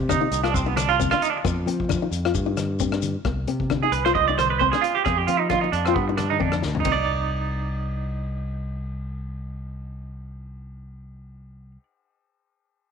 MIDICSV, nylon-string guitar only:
0, 0, Header, 1, 2, 480
1, 0, Start_track
1, 0, Key_signature, -3, "minor"
1, 0, Tempo, 451807
1, 1534, Time_signature, 4, 2, 24, 8
1, 13722, End_track
2, 0, Start_track
2, 0, Title_t, "Nylon-string guitar"
2, 0, Program_c, 0, 24
2, 100, Note_on_c, 0, 62, 78
2, 189, Note_off_c, 0, 62, 0
2, 226, Note_on_c, 0, 63, 66
2, 392, Note_off_c, 0, 63, 0
2, 462, Note_on_c, 0, 65, 70
2, 630, Note_off_c, 0, 65, 0
2, 704, Note_on_c, 0, 63, 66
2, 871, Note_off_c, 0, 63, 0
2, 1059, Note_on_c, 0, 60, 72
2, 1148, Note_off_c, 0, 60, 0
2, 1198, Note_on_c, 0, 62, 70
2, 1360, Note_off_c, 0, 62, 0
2, 1535, Note_on_c, 0, 59, 79
2, 1700, Note_off_c, 0, 59, 0
2, 1777, Note_on_c, 0, 60, 64
2, 1942, Note_off_c, 0, 60, 0
2, 2008, Note_on_c, 0, 62, 69
2, 2101, Note_off_c, 0, 62, 0
2, 2150, Note_on_c, 0, 63, 63
2, 2314, Note_off_c, 0, 63, 0
2, 2398, Note_on_c, 0, 65, 68
2, 2560, Note_off_c, 0, 65, 0
2, 2615, Note_on_c, 0, 63, 61
2, 2785, Note_off_c, 0, 63, 0
2, 2979, Note_on_c, 0, 60, 68
2, 3068, Note_off_c, 0, 60, 0
2, 3109, Note_on_c, 0, 62, 63
2, 3274, Note_off_c, 0, 62, 0
2, 3459, Note_on_c, 0, 59, 74
2, 3623, Note_off_c, 0, 59, 0
2, 3698, Note_on_c, 0, 60, 63
2, 3862, Note_off_c, 0, 60, 0
2, 3942, Note_on_c, 0, 62, 70
2, 4030, Note_off_c, 0, 62, 0
2, 4071, Note_on_c, 0, 63, 61
2, 4235, Note_off_c, 0, 63, 0
2, 4311, Note_on_c, 0, 65, 65
2, 4475, Note_off_c, 0, 65, 0
2, 4559, Note_on_c, 0, 63, 60
2, 4720, Note_off_c, 0, 63, 0
2, 4897, Note_on_c, 0, 60, 69
2, 4987, Note_off_c, 0, 60, 0
2, 5041, Note_on_c, 0, 62, 61
2, 5201, Note_off_c, 0, 62, 0
2, 5376, Note_on_c, 0, 59, 68
2, 5541, Note_off_c, 0, 59, 0
2, 5616, Note_on_c, 0, 60, 61
2, 5781, Note_off_c, 0, 60, 0
2, 5868, Note_on_c, 0, 62, 68
2, 5954, Note_off_c, 0, 62, 0
2, 5990, Note_on_c, 0, 63, 65
2, 6154, Note_off_c, 0, 63, 0
2, 6246, Note_on_c, 0, 65, 66
2, 6405, Note_off_c, 0, 65, 0
2, 6471, Note_on_c, 0, 63, 60
2, 6635, Note_off_c, 0, 63, 0
2, 6797, Note_on_c, 0, 60, 65
2, 6893, Note_off_c, 0, 60, 0
2, 6940, Note_on_c, 0, 62, 58
2, 7107, Note_off_c, 0, 62, 0
2, 7280, Note_on_c, 0, 60, 63
2, 7427, Note_off_c, 0, 60, 0
2, 13722, End_track
0, 0, End_of_file